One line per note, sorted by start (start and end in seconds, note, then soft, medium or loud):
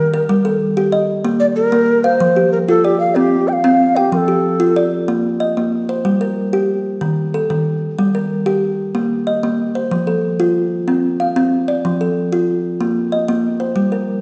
0.00 0.13 D#3 medium
0.00 0.58 A#4 loud
0.14 0.45 A#4 medium
0.29 0.61 G3 medium
0.45 0.93 A4 medium
0.77 1.09 G4 medium
0.92 1.40 D#5 medium
1.25 1.57 A#3 medium
1.40 1.46 D5 loud
1.56 2.05 A#4 loud
1.72 2.04 A#3 medium
2.04 2.52 C5 loud
2.04 2.36 F5 medium
2.20 2.52 F3 medium
2.36 2.84 G4 medium
2.53 2.59 A#4 medium
2.68 3.00 F4 medium
2.68 2.86 A4 loud
2.85 2.99 G4 medium
2.85 3.32 D5 medium
3.00 3.17 F5 medium
3.15 3.48 C4 medium
3.15 3.50 G4 medium
3.48 3.54 G5 medium
3.53 3.98 F5 medium
3.64 3.96 C4 medium
3.96 4.13 G4 medium
3.96 4.29 G5 medium
4.12 4.45 F3 medium
4.12 4.18 A#4 medium
4.17 4.89 A4 medium
4.28 4.76 G4 medium
4.60 4.92 F4 medium
4.76 5.25 D5 medium
5.08 5.41 A#3 medium
5.40 5.89 D#5 medium
5.57 5.89 A#3 medium
5.89 6.21 C5 medium
6.05 6.37 G3 medium
6.21 6.69 A#4 medium
6.53 6.85 G4 medium
7.01 7.34 D#3 medium
7.34 7.82 A4 medium
7.50 7.82 D#3 medium
7.99 8.31 G3 medium
8.15 8.63 A#4 medium
8.46 8.78 G4 medium
8.95 9.27 A#3 medium
9.27 9.75 D#5 medium
9.43 9.75 A#3 medium
9.75 10.07 C5 medium
9.91 10.23 F3 medium
10.07 10.55 A4 medium
10.40 10.72 F4 medium
10.88 11.20 C4 medium
11.20 11.68 F5 medium
11.36 11.68 C4 medium
11.68 12.00 D5 medium
11.85 12.16 F3 medium
12.01 12.48 A4 medium
12.33 12.64 F4 medium
12.81 13.12 A#3 medium
13.12 13.60 D#5 medium
13.28 13.60 A#3 medium
13.60 13.92 C5 medium
13.76 14.08 G3 medium
13.92 14.21 A#4 medium